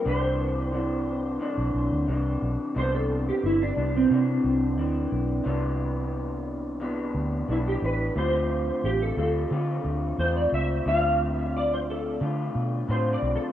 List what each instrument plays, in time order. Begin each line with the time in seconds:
0.05 fingered electric bass C2, clean electric guitar C3 E3 D4, electric slide guitar C5
0.72 clean electric guitar C3 E3 D4
1.40 clean electric guitar C3 E3 D4
1.58 fingered electric bass B1
1.74 fingered electric bass B1
1.92 fingered electric bass D2
2.07 fingered electric bass C2, clean electric guitar C3 E3 D4
2.42 fingered electric bass B1
2.75 fingered electric bass C2, clean electric guitar C3 E3 B3 D4, electric slide guitar C5
2.95 electric slide guitar A4
3.29 electric slide guitar G4
3.43 fingered electric bass G1, electric slide guitar E4
3.62 electric slide guitar D4
3.76 fingered electric bass C2, clean electric guitar E3 B3 D4
3.96 electric slide guitar C4
4.09 clean electric guitar C3 E3 D4, fingered electric bass C3
4.44 fingered electric bass C2
4.78 fingered electric bass D2, clean electric guitar E3 D4
5.12 fingered electric bass B1
5.44 fingered electric bass C2, clean electric guitar C3 E3 B3 D4
6.80 clean electric guitar C3 E3 B3 D4
7.15 fingered electric bass D2
7.48 fingered electric bass B1, clean electric guitar E3 B3 D4, electric slide guitar E4
7.68 electric slide guitar G4
7.82 fingered electric bass A1, electric slide guitar B4
8.16 fingered electric bass D2, clean electric guitar D3 A3 C4 F4, electric slide guitar C5
8.84 fingered electric bass A1, electric slide guitar G4
9.02 electric slide guitar A4
9.17 fingered electric bass D2, clean electric guitar A3 C4 F4, electric slide guitar A4
9.51 clean electric guitar D3 A3 C4 F4, fingered electric bass D3
9.85 fingered electric bass D2
10.18 fingered electric bass E2, clean electric guitar A3 C4 F4, electric slide guitar C5
10.36 electric slide guitar D5
10.52 fingered electric bass C#2, electric slide guitar E5
10.86 fingered electric bass D2, clean electric guitar D3 A3 C4 F4, electric slide guitar F5
11.32 electric slide guitar E5
11.56 electric slide guitar D5
11.73 electric slide guitar C5
11.90 electric slide guitar A4
12.20 clean electric guitar D3 A3 F4, fingered electric bass D3
12.55 fingered electric bass B2
12.88 fingered electric bass A2, clean electric guitar D3 A3 C4 F4, electric slide guitar C5
13.13 electric slide guitar D5
13.22 fingered electric bass B1
13.36 electric slide guitar A4